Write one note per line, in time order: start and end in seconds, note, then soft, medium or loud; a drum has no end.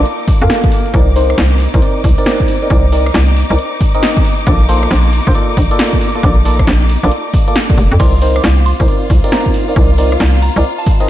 0.00 0.93 D#4 medium
0.00 0.93 D6 medium
0.06 closed hi-hat medium
0.28 kick loud
0.28 open hi-hat loud
0.42 0.47 F2 loud
0.42 0.92 A#3 medium
0.42 0.92 F4 medium
0.42 0.92 A4 medium
0.42 0.92 F5 loud
0.42 closed hi-hat medium
0.50 snare loud
0.50 closed hi-hat medium
0.64 kick loud
0.72 open hi-hat medium
0.86 closed hi-hat soft
0.94 1.34 C2 loud
0.94 1.08 C4 medium
0.94 1.08 D#4 medium
0.94 8.01 D#4 medium
0.94 1.08 A#4 medium
0.94 1.08 D5 loud
0.94 8.01 D6 medium
0.94 kick loud
0.94 closed hi-hat medium
1.16 1.35 C4 medium
1.16 1.35 D#4 medium
1.16 1.35 A#4 medium
1.16 1.35 C5 loud
1.16 open hi-hat loud
1.30 cross-stick medium
1.38 1.68 C2 loud
1.38 snare loud
1.38 closed hi-hat medium
1.60 open hi-hat medium
1.74 1.80 C2 loud
1.74 1.80 C4 medium
1.74 1.80 D#4 medium
1.74 1.80 A#4 medium
1.74 1.80 C5 loud
1.74 kick loud
1.82 2.01 C4 medium
1.82 2.01 D#4 medium
1.82 2.01 A#4 medium
1.82 2.01 D5 medium
1.82 closed hi-hat medium
2.04 2.14 C2 medium
2.04 kick loud
2.04 open hi-hat loud
2.18 2.59 C4 loud
2.18 2.59 D#4 medium
2.18 2.59 A#4 medium
2.18 2.59 D5 loud
2.18 closed hi-hat medium
2.26 snare loud
2.26 closed hi-hat medium
2.40 kick medium
2.48 open hi-hat medium
2.62 2.68 C4 medium
2.62 2.68 D#4 medium
2.62 2.68 A#4 medium
2.62 2.68 D5 medium
2.62 closed hi-hat soft
2.70 3.11 C2 loud
2.70 2.85 C4 medium
2.70 2.85 D#4 medium
2.70 2.85 A#4 medium
2.70 2.85 D5 loud
2.70 kick loud
2.70 closed hi-hat medium
2.92 3.07 C4 medium
2.92 3.07 D#4 medium
2.92 3.07 A#4 medium
2.92 3.07 D5 loud
2.92 open hi-hat loud
3.06 cross-stick medium
3.14 3.44 C2 loud
3.14 snare loud
3.14 closed hi-hat medium
3.37 open hi-hat medium
3.50 3.56 C2 loud
3.50 3.59 C4 medium
3.50 3.59 D#4 medium
3.50 3.59 A#4 medium
3.50 3.59 D5 loud
3.59 closed hi-hat medium
3.81 kick loud
3.81 open hi-hat loud
3.95 4.24 C4 medium
3.95 4.24 D#4 medium
3.95 4.24 A#4 medium
3.95 4.24 D#5 loud
3.95 closed hi-hat medium
4.03 snare loud
4.03 closed hi-hat medium
4.17 kick loud
4.25 open hi-hat medium
4.39 closed hi-hat soft
4.47 4.87 A#1 loud
4.47 4.61 A#3 medium
4.47 4.61 F4 medium
4.47 4.61 A4 medium
4.47 4.61 D5 loud
4.47 kick loud
4.47 closed hi-hat medium
4.69 4.88 A#3 medium
4.69 4.88 F4 medium
4.69 4.88 A4 medium
4.69 4.88 C5 loud
4.69 open hi-hat loud
4.83 cross-stick medium
4.91 5.21 A#1 loud
4.91 snare loud
4.91 closed hi-hat medium
5.13 open hi-hat medium
5.27 5.33 A#1 loud
5.27 5.33 A#3 loud
5.27 5.33 F4 medium
5.27 5.33 A4 medium
5.27 5.33 C5 loud
5.27 kick loud
5.35 5.54 A#3 medium
5.35 5.54 F4 medium
5.35 5.54 A4 medium
5.35 5.54 D5 loud
5.35 closed hi-hat medium
5.57 5.67 A#1 medium
5.57 kick loud
5.57 open hi-hat loud
5.71 6.12 A#3 loud
5.71 6.12 F4 medium
5.71 6.12 A4 medium
5.71 6.12 D5 loud
5.71 closed hi-hat medium
5.79 snare loud
5.79 closed hi-hat medium
5.93 kick medium
6.01 open hi-hat loud
6.15 6.21 A#3 medium
6.15 6.21 F4 medium
6.15 6.21 A4 medium
6.15 6.21 D5 medium
6.15 closed hi-hat soft
6.23 6.64 A#1 loud
6.23 6.38 A#3 loud
6.23 6.38 F4 medium
6.23 6.38 A4 medium
6.23 6.38 D5 loud
6.23 kick loud
6.23 closed hi-hat medium
6.45 6.60 A#3 medium
6.45 6.60 F4 medium
6.45 6.60 A4 medium
6.45 6.60 D5 loud
6.45 open hi-hat loud
6.59 kick medium
6.59 cross-stick medium
6.67 6.97 A#1 loud
6.67 snare loud
6.67 closed hi-hat medium
6.89 open hi-hat loud
7.03 7.09 A#1 loud
7.03 7.12 A#3 medium
7.03 7.12 F4 medium
7.03 7.12 A4 medium
7.03 7.12 D5 loud
7.03 closed hi-hat soft
7.12 closed hi-hat medium
7.34 kick loud
7.34 open hi-hat loud
7.48 7.56 A#3 medium
7.48 7.56 F4 medium
7.48 7.56 A4 medium
7.48 7.56 D5 loud
7.48 closed hi-hat medium
7.56 snare loud
7.56 closed hi-hat medium
7.70 7.78 A#3 medium
7.70 7.78 F4 medium
7.70 7.78 A4 medium
7.70 7.78 D5 medium
7.70 kick loud
7.78 7.88 F1 medium
7.78 open hi-hat loud
7.92 7.97 F2 loud
7.92 closed hi-hat soft
8.00 8.40 C2 loud
8.00 8.14 C4 loud
8.00 8.14 D#4 medium
8.00 11.10 F4 medium
8.00 8.14 A#4 medium
8.00 8.14 D5 loud
8.00 11.10 F5 medium
8.00 8.15 C6 loud
8.00 kick loud
8.00 closed hi-hat medium
8.00 crash medium
8.22 8.41 C4 medium
8.22 8.41 D#4 medium
8.22 8.41 A#4 medium
8.22 8.41 C5 loud
8.22 open hi-hat loud
8.36 8.47 D6 loud
8.36 cross-stick medium
8.44 8.74 C2 loud
8.44 snare loud
8.44 closed hi-hat medium
8.66 8.82 C6 medium
8.66 open hi-hat loud
8.80 8.86 C2 loud
8.80 8.86 C4 medium
8.80 8.86 D#4 medium
8.80 8.86 A#4 medium
8.80 8.86 C5 loud
8.80 kick loud
8.88 9.07 C4 medium
8.88 9.07 D#4 medium
8.88 9.07 A#4 medium
8.88 9.07 D5 medium
8.88 closed hi-hat medium
9.10 9.20 C2 medium
9.10 kick loud
9.10 open hi-hat loud
9.24 9.65 C4 loud
9.24 9.65 D#4 medium
9.24 9.65 A#4 medium
9.24 9.65 D5 loud
9.24 closed hi-hat medium
9.32 9.51 A#5 medium
9.32 snare loud
9.32 closed hi-hat medium
9.46 kick medium
9.54 open hi-hat medium
9.68 9.74 C4 medium
9.68 9.74 D#4 medium
9.68 9.74 A#4 medium
9.68 9.74 D5 medium
9.68 closed hi-hat soft
9.76 10.17 C2 loud
9.76 9.90 C4 medium
9.76 9.90 D#4 medium
9.76 9.90 A#4 medium
9.76 9.90 D5 loud
9.76 kick loud
9.76 closed hi-hat medium
9.98 10.13 C4 medium
9.98 10.13 D#4 medium
9.98 10.13 A#4 medium
9.98 10.13 D5 loud
9.98 open hi-hat loud
10.12 cross-stick medium
10.20 10.50 C2 loud
10.20 snare loud
10.20 closed hi-hat medium
10.42 10.58 A#5 medium
10.42 open hi-hat medium
10.56 10.62 C2 loud
10.56 10.65 C4 medium
10.56 10.65 D#4 medium
10.56 10.65 A#4 medium
10.56 10.65 D5 loud
10.64 closed hi-hat medium
10.78 10.95 A5 medium
10.86 kick loud
10.86 open hi-hat loud
11.00 11.10 C4 loud
11.00 11.10 D#4 medium
11.00 11.10 A#4 medium
11.00 11.10 D#5 loud
11.00 closed hi-hat medium